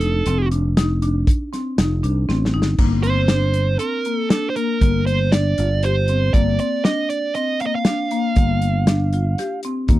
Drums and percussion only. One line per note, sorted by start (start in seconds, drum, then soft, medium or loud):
0.01 closed hi-hat medium
0.26 closed hi-hat medium
0.51 closed hi-hat medium
0.77 snare loud
0.77 closed hi-hat medium
1.02 closed hi-hat medium
1.27 kick loud
1.27 closed hi-hat medium
1.53 snare soft
1.53 closed hi-hat medium
1.78 snare loud
1.78 closed hi-hat medium
2.04 closed hi-hat medium
2.29 snare medium
2.45 snare medium
2.62 snare medium
2.78 kick medium
2.78 crash medium
3.03 closed hi-hat medium
3.28 snare loud
3.28 closed hi-hat medium
3.54 closed hi-hat medium
3.79 closed hi-hat medium
4.05 closed hi-hat medium
4.30 snare loud
4.30 closed hi-hat medium
4.56 closed hi-hat medium
4.81 kick loud
4.81 closed hi-hat medium
5.07 closed hi-hat medium
5.32 snare loud
5.32 closed hi-hat medium
5.58 closed hi-hat medium
5.83 closed hi-hat medium
6.08 closed hi-hat medium
6.34 kick loud
6.34 closed hi-hat medium
6.59 closed hi-hat medium
6.85 snare medium
6.85 closed hi-hat medium
7.10 closed hi-hat medium
7.35 closed hi-hat medium
7.60 closed hi-hat soft
7.85 snare loud
7.85 closed hi-hat medium
8.11 closed hi-hat medium
8.36 kick medium
8.36 closed hi-hat medium
8.62 closed hi-hat medium
8.87 snare loud
8.87 closed hi-hat medium
9.13 closed hi-hat medium
9.38 snare soft
9.38 closed hi-hat medium
9.63 closed hi-hat medium
9.88 kick medium
9.88 closed hi-hat medium